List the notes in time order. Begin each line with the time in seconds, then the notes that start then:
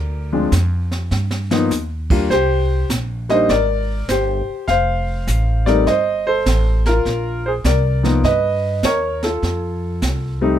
Already playing: D2 A#4 D5
0.33 F3 G#3 C4 D4
0.52 F2, kick, snare, hi-hat pedal
0.91 snare
1.11 G2, snare
1.31 snare
1.51 F3 A#3 B3 D#4, snare
1.71 D#2, snare, hi-hat pedal
2.10 G3 A#3 D4 F4, kick, crash
2.30 C2 G4 C5, brush sweep, kick, snare
2.89 A#1, kick, snare, hi-hat pedal
3.29 G3 A#3 D4 D#4 C5 D#5, snare
3.49 G#1 A#4 D5, brush sweep, kick, snare
4.08 G1 G4 C5, kick, snare, hi-hat pedal
4.48 muted upright bass stroke
4.68 F1 C5 F5, brush sweep, kick, snare
5.27 A1, kick, snare, hi-hat pedal
5.66 G3 A3 C4 D#4 A#4 D5, snare
5.87 G1 C5 D#5, brush sweep, kick, snare
6.27 A4 C5
6.46 A1, kick, snare, hi-hat pedal
6.86 F4 A#4, snare
7.05 A#1, brush sweep, kick, snare
7.46 G#4 C5
7.64 C2 A#4 D5, kick, snare, hi-hat pedal
8.03 F3 A#3 B3 D#4, snare
8.24 G2 B4 D#5, brush sweep, kick, snare
8.83 D#2 A#4 C#5, kick, snare, hi-hat pedal
9.23 F4 A4, snare
9.42 F2, brush sweep, kick, snare
10.02 C2, kick, snare, hi-hat pedal
10.41 G3 A3 C4 D#4